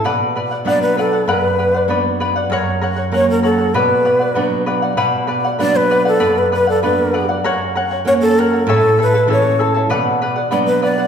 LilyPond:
<<
  \new Staff \with { instrumentName = "Charango" } { \time 2/4 \key b \minor \tempo 4 = 97 <b' d'' fis''>8 <b' d'' fis''>16 <d'' fis''>16 <b' d'' fis''>8 <b' d'' fis''>16 <d'' fis''>16 | <b' d'' fis''>8 <b' d'' fis''>16 <d'' fis''>16 <b' d'' fis''>8 <b' d'' fis''>16 <d'' fis''>16 | <ais' cis'' fis''>8 <ais' cis'' fis''>16 <cis'' fis''>16 <ais' cis'' fis''>8 <ais' cis'' fis''>16 <cis'' fis''>16 | <b' d'' fis''>8 <b' d'' fis''>16 <d'' fis''>16 <b' d'' fis''>8 <b' d'' fis''>16 <d'' fis''>16 |
<b' d'' fis''>8 <b' d'' fis''>16 <d'' fis''>16 <b' d'' fis''>8 <b' d'' fis''>16 <d'' fis''>16 | <b' d'' fis''>8 <b' d'' fis''>16 <d'' fis''>16 <b' d'' fis''>8 <b' d'' fis''>16 <d'' fis''>16 | <ais' cis'' fis''>8 <ais' cis'' fis''>16 <cis'' fis''>16 <ais' cis'' fis''>8 <ais' cis'' fis''>16 <cis'' fis''>16 | <e' a' cis'' e'' a''>8 <e' a' e'' a''>16 <e' a' a''>16 <e' a' e'' a''>8 <e' a' e'' a''>16 <e' a' a''>16 |
<b' d'' fis''>8 <b' d'' fis''>16 <d'' fis''>16 <b' d'' fis''>8 <b' d'' fis''>16 <d'' fis''>16 | }
  \new Staff \with { instrumentName = "Shakuhachi" } { \time 2/4 \key b \minor r4 d''16 b'16 a'8 | b'4 r4 | r4 cis''16 ais'16 a'8 | b'4. r8 |
r4 d''16 b'8 a'16~ | a'16 b'16 b'16 a'16 b'8. r16 | r4 cis''16 a'16 ais'8 | a'8 b'8 cis''8. r16 |
r4 d''16 b'16 d''8 | }
  \new Staff \with { instrumentName = "Nylon-string guitar" } { \clef bass \time 2/4 \key b \minor b,4 <fis b d'>4 | fis,4 <fis b d'>4 | fis,4 <fis ais cis'>4 | b,4 <fis b d'>4 |
b,4 <fis b d'>4 | fis,4 <fis b d'>4 | fis,4 <fis ais cis'>4 | a,4 <e a cis'>4 |
b,4 <fis b d'>4 | }
>>